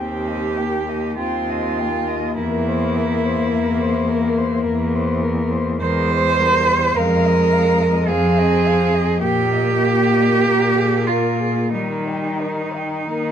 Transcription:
Already playing: D#2 C4 G5
0.00 G4
0.27 D#5
0.57 A#3 G5
0.88 D#5
1.18 D#2 C4 F4 G5
1.49 D#5
1.79 A#3 G5
2.08 D#5
2.38 E2 E4 A#4
2.67 C5
2.96 A#4
3.24 C5
3.52 E2 A#4
3.81 C5
4.08 A#4
4.38 C5
4.65 E2 A#4
4.95 C5
5.23 A#4
5.51 C5
5.81 E2 G#3 A#4 C5
6.10 C5
6.39 G3 A#4
6.69 C5
6.96 F2 G#3 A#4 F5
7.26 D#5
7.53 F5
7.81 D#5
8.08 F2 C4 G#4 F5
8.38 D#5
8.66 F5
8.94 D#5
9.20 A#2 A#3 G4 G5
9.52 D#5
9.83 G5
10.13 D#5
10.43 A#2 A#4
10.75 G#4
11.08 F4 A#4
11.40 G#4
11.73 D#3 G3 D#4 A#4
12.08 G5
12.41 A#4
12.75 G5
13.07 D#3 A#3 A#4

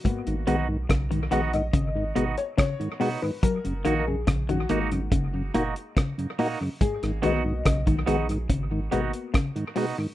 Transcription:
0.04 G#2 A#3 B3 F#4, kick, closed hi-hat
0.27 G#1 G#2 D#3, closed hi-hat
0.47 B1 D#3 G#3 B3 D#4 F#4, closed hi-hat
0.68 G#2 D#3
0.89 B1 C#3, kick, cross-stick, closed hi-hat
1.11 G#2 D#3, closed hi-hat
1.31 A#1 D#3 G#3 B3 D#4 F#4 F#5, closed hi-hat
1.53 G#2 D#3 D#5, closed hi-hat
1.73 G#1 C#3, kick, closed hi-hat
1.95 G#2 D#3
2.15 G#1 B2 G#3 B3 D#4 F#4, closed hi-hat
2.38 C#5, closed hi-hat
2.58 C#3 C#5, kick, cross-stick, closed hi-hat
2.80 G#2 D#3, closed hi-hat
3.00 B2 G#3 B3 D#4 F#4, open hi-hat
3.22 G#2 D#3 B4
3.43 F#3 A#4, kick, closed hi-hat
3.64 F#1 F#2 C#3, closed hi-hat
3.85 A#1 D#3 A#3 D#4 F#4, closed hi-hat
4.00 A#4
4.07 F#2 C#3 G#4
4.27 A#1 C#3, kick, cross-stick, closed hi-hat
4.49 F#2 C#3 D#3 F#4, closed hi-hat
4.69 G#1 D#3 G#3 A#3 D#4 F#4, closed hi-hat
4.92 F#2 C#3, closed hi-hat
5.12 F#1 C#3, kick, closed hi-hat
5.34 F#2 C#3
5.54 F#1 A#2 A#3 D#4 F#4, closed hi-hat
5.76 closed hi-hat
5.97 C#3, kick, cross-stick, closed hi-hat
6.18 F#2 C#3, closed hi-hat
6.39 A#2 A#3 D#4 F#4, open hi-hat
6.61 F#2 C#3
6.81 G#2 G#4, kick, closed hi-hat
7.03 G#1 G#2 D#3, cross-stick, closed hi-hat
7.22 B1 D#3 G#3 A#3 B3 D#4 F#4 D#5, closed hi-hat
7.44 G#2 D#3
7.65 B1 C#3, kick, cross-stick, closed hi-hat
7.86 G#2 D#3, kick, closed hi-hat
8.06 A#1 D#3 G#3 B3 D#4 F#4 G#4, closed hi-hat
8.29 G#2 D#3, closed hi-hat
8.50 G#1 C#3, kick, closed hi-hat
8.71 G#2 D#3
8.91 G#1 B2 G#3 A#3 B3 D#4 F#4, closed hi-hat
9.13 closed hi-hat
9.34 C#3, kick, cross-stick, closed hi-hat
9.56 G#2 D#3, closed hi-hat
9.76 B2 G#3 B3 D#4 F#4, open hi-hat
9.98 G#2 D#3

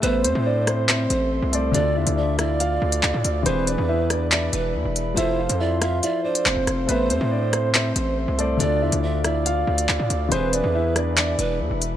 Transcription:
0.00 A1 A3 B3 A4 B4 C5 E5 C6, closed hi-hat
0.06 E5
0.24 E2 C4 C5, closed hi-hat
0.35 A2
0.46 D4 D5
0.67 C4 C5, cross-stick, closed hi-hat
0.89 C4 C5 E5, clap, closed hi-hat
1.10 A1 C5, closed hi-hat
1.42 C2
1.52 A3 A4 C5 D5, closed hi-hat
1.72 D2 D3 D4 F4 D5 F5 D6, closed hi-hat
1.77 A4
1.96 E2 E4 E5
2.07 D2, closed hi-hat
2.17 D4 D5 E5
2.39 E4 D5 E5, cross-stick, closed hi-hat
2.60 F4 F5, closed hi-hat
2.82 D2
2.92 closed hi-hat
3.03 D2, clap
3.14 A2
3.24 D2, closed hi-hat
3.43 E1 E3 C4 E4 G#4 B4 C5 E5 B5, closed hi-hat
3.49 B4
3.67 D4 D5, closed hi-hat
3.78 E2
3.89 E4 E5
4.10 D4 D5, cross-stick, closed hi-hat
4.32 D4 D5 E5, clap, closed hi-hat
4.53 E1 B4, closed hi-hat
4.75 E2
4.85 E1
4.96 closed hi-hat
5.14 F1 F3 E4 F4 A4 C5 E5 F5 C6, closed hi-hat
5.20 C5
5.39 F4 F5
5.49 F2, closed hi-hat
5.60 E4 D5 E5
5.82 F4 E5 F5, cross-stick, closed hi-hat
6.03 E4 D5 E5, closed hi-hat
6.24 D4 C5 D5
6.35 closed hi-hat
6.46 F1 C4 C5, clap
6.57 F1
6.67 F1, cross-stick, closed hi-hat
6.86 A1 A3 B3 A4 B4 C5 E5, closed hi-hat
6.91 E5
7.10 E2 C4 C5, closed hi-hat
7.21 A2
7.32 D4 D5
7.53 C4 C5, cross-stick, closed hi-hat
7.74 C4 C5 E5, clap, closed hi-hat
7.96 A1 C5, closed hi-hat
8.28 C2
8.37 A3 A4 C5 D5, closed hi-hat
8.57 D2 D3 D4 F4 D5 F5 D6, closed hi-hat
8.63 A4
8.82 E2 E4 E5
8.92 D2, closed hi-hat
9.03 D4 D5 E5
9.24 E4 D5 E5, cross-stick, closed hi-hat
9.46 F4 F5, closed hi-hat
9.67 D2
9.78 closed hi-hat
9.89 D2, clap
9.99 A2
10.10 D2, closed hi-hat
10.29 E1 E3 C4 E4 G#4 B4 C5 E5 B5, closed hi-hat
10.34 B4
10.53 D4 D5, closed hi-hat
10.64 E2
10.75 E4 E5
10.96 D4 D5, cross-stick, closed hi-hat
11.17 D4 D5 E5, clap, closed hi-hat
11.39 E1 B4, closed hi-hat
11.60 E2
11.71 E1
11.82 closed hi-hat

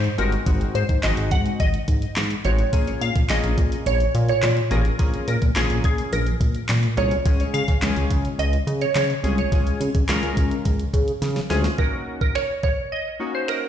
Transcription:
Already playing: C5
0.04 closed hi-hat
0.18 G1 G#3 C4 D#4 F#4 A#4, closed hi-hat
0.32 closed hi-hat
0.46 G#1 G#3 C4 D#4 F#4, kick, closed hi-hat
0.61 closed hi-hat
0.75 G#2 C5, closed hi-hat
0.89 G#2, kick, closed hi-hat
1.03 G#1 G#3 C4 D#4 F#4 D#5, snare, clap, closed hi-hat
1.17 G#1, closed hi-hat
1.31 G#2 F#5, kick, closed hi-hat
1.46 closed hi-hat
1.60 G#1 D#5, kick, closed hi-hat
1.74 closed hi-hat
1.88 G#2, kick, closed hi-hat
2.02 closed hi-hat
2.16 G#2, snare, clap, closed hi-hat
2.30 closed hi-hat
2.45 A1 G#3 C4 D#4 F#4 C#5, closed hi-hat
2.59 closed hi-hat
2.73 A#1 A#3 C#4 F4 G#4, kick, closed hi-hat
2.87 closed hi-hat
3.01 A#2 F5, closed hi-hat
3.16 A#2, kick, closed hi-hat
3.29 A#1 A#3 C#4 F4 G#4 D#5, snare, clap, closed hi-hat
3.44 A#1, closed hi-hat
3.58 A#2, kick, closed hi-hat
3.72 closed hi-hat
3.86 A#1 C#5, closed hi-hat
4.00 closed hi-hat
4.15 A#2, closed hi-hat
4.28 C#5, closed hi-hat
4.43 A#2, snare, clap, closed hi-hat
4.57 closed hi-hat
4.71 A1 A#3 C#4 F4 G#4 A#4, closed hi-hat
4.85 closed hi-hat
4.99 A#1 A#3 C#4 F4 G#4, kick, closed hi-hat
5.14 closed hi-hat
5.28 A#2 A#4, closed hi-hat
5.42 A#2, kick, closed hi-hat
5.55 A#1 A#3 C#4 F4 G#4, snare, clap, closed hi-hat
5.70 A#1, closed hi-hat
5.84 A#2 G#4, kick, closed hi-hat
5.98 closed hi-hat
6.12 A#1 A#4, closed hi-hat
6.26 closed hi-hat
6.41 A#2, kick, closed hi-hat
6.55 closed hi-hat
6.69 A#2, snare, clap, closed hi-hat
6.83 closed hi-hat
6.97 C2 A#3 C#4 F4 G#4 C#5, closed hi-hat
7.11 closed hi-hat
7.25 C#2 G#3 C#4 F4 G#4, kick, closed hi-hat
7.40 closed hi-hat
7.54 C#3 F5, closed hi-hat
7.68 C#3, kick, closed hi-hat
7.82 C#2 G#3 C#4 F4 G#4, snare, clap, closed hi-hat
7.96 C#2, closed hi-hat
8.11 C#3, kick, closed hi-hat
8.25 closed hi-hat
8.39 C#2 D#5, closed hi-hat
8.53 closed hi-hat
8.67 C#3, closed hi-hat
8.81 C#5, closed hi-hat
8.95 C#3 C#5, snare, clap, closed hi-hat
9.10 closed hi-hat
9.24 C2 G#3 C#4 F4 G#4, closed hi-hat
9.38 C#5, closed hi-hat
9.52 C#2 G#3 C#4 F4 G#4, kick, closed hi-hat
9.67 closed hi-hat
9.80 C#3, closed hi-hat
9.95 C#3, kick, closed hi-hat
10.08 C#2 G#3 C#4 F4 A#4, snare, clap, closed hi-hat
10.23 C#2, closed hi-hat
10.37 C#3, kick, closed hi-hat
10.51 closed hi-hat
10.65 C#2, kick, closed hi-hat
10.80 closed hi-hat
10.94 C#3, kick, closed hi-hat
11.08 closed hi-hat
11.22 C#3, snare, closed hi-hat
11.36 snare, closed hi-hat
11.50 D2 G#3 C#4 F4 G#4, snare, closed hi-hat
11.64 snare, closed hi-hat
11.78 A#3 C#4 D#4 F#4 A#4, kick
12.21 A#4, kick
12.35 C#5, finger snap
12.63 C#5, kick
12.92 D#5
13.20 A#3 C#4 D#4 F#4
13.35 C5
13.48 A#4, finger snap

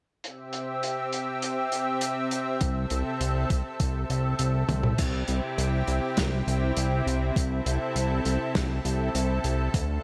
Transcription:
0.24 C3 C4 G4 E5, closed hi-hat
0.53 closed hi-hat
0.83 closed hi-hat
1.13 closed hi-hat
1.42 closed hi-hat
1.72 closed hi-hat
2.01 closed hi-hat
2.31 closed hi-hat
2.61 C2 A4, kick, closed hi-hat
2.90 C2, closed hi-hat
3.21 C2, closed hi-hat
3.50 C2, kick, closed hi-hat
3.80 C2, kick, closed hi-hat
4.10 C2, closed hi-hat
4.39 C2, closed hi-hat
4.69 C2, closed hi-hat, high tom
4.83 mid tom
4.98 C2 C3 C4 E4 G4, kick, closed hi-hat, crash
5.28 C2, closed hi-hat
5.58 C2, closed hi-hat
5.87 C2, closed hi-hat
6.17 C2, kick, snare, closed hi-hat
6.47 C2, closed hi-hat
6.77 C2, closed hi-hat
7.07 C2, closed hi-hat
7.36 C2 A4, kick, closed hi-hat
7.66 C2, closed hi-hat
7.96 C2, closed hi-hat
8.25 C2, closed hi-hat
8.55 C2, kick, snare, closed hi-hat
8.85 C2, closed hi-hat
9.15 C2, closed hi-hat
9.44 C2, closed hi-hat
9.74 D2 D3 D4 F4, kick, closed hi-hat

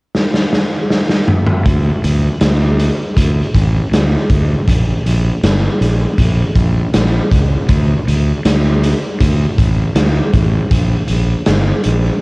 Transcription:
0.15 snare
0.34 snare
0.53 snare
0.90 snare
1.09 snare
1.28 mid tom
1.46 mid tom
1.66 D2, kick, closed hi-hat
2.04 D2, closed hi-hat
2.41 D2, snare, closed hi-hat
2.79 closed hi-hat
3.17 D2, kick, closed hi-hat
3.54 A1, kick, closed hi-hat
3.92 D2, snare, closed hi-hat
4.30 D2, kick, closed hi-hat
4.68 A#1, kick, closed hi-hat
5.06 A#1, closed hi-hat
5.43 G1, snare, closed hi-hat
5.81 A#1, closed hi-hat
6.18 A#1, kick, closed hi-hat
6.56 A#1, kick, closed hi-hat
6.94 A#1, snare, closed hi-hat
7.32 C#2, kick, closed hi-hat
7.69 D2, kick, closed hi-hat
8.08 D2, closed hi-hat
8.45 D2, snare, closed hi-hat
8.83 closed hi-hat
9.20 D2, kick, closed hi-hat
9.58 A1, kick, closed hi-hat
9.96 D2, snare, closed hi-hat
10.34 A1, kick, closed hi-hat
10.71 A#1, kick, closed hi-hat
11.08 A#1, closed hi-hat
11.46 G1, snare, closed hi-hat
11.84 A#1, closed hi-hat

